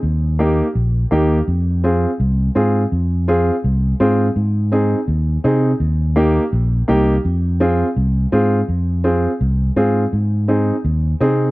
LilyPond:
<<
  \new Staff \with { instrumentName = "Upright piano" } { \time 4/4 \key f \minor \tempo 4 = 166 r4 <bes ees' g'>8 r4. <bes ees' g'>8 r8 | r4 <c' f' aes'>8 r4. <c' f' aes'>8 r8 | r4 <c' f' aes'>8 r4. <c' f' aes'>8 r8 | r4 <c' ees' aes'>8 r4. <c' ees' aes'>8 r8 |
r4 <bes ees' g'>8 r4. <bes ees' g'>8 r8 | r4 <c' f' aes'>8 r4. <c' f' aes'>8 r8 | r4 <c' f' aes'>8 r4. <c' f' aes'>8 r8 | r4 <c' ees' aes'>8 r4. <c' ees' aes'>8 r8 | }
  \new Staff \with { instrumentName = "Fingered electric bass" } { \clef bass \time 4/4 \key f \minor ees,2 bes,,4 ees,4 | f,2 c,4 aes,4 | f,2 c,4 aes,4 | aes,2 ees,4 c4 |
ees,2 bes,,4 c,4 | f,2 c,4 aes,4 | f,2 c,4 aes,4 | aes,2 ees,4 c4 | }
>>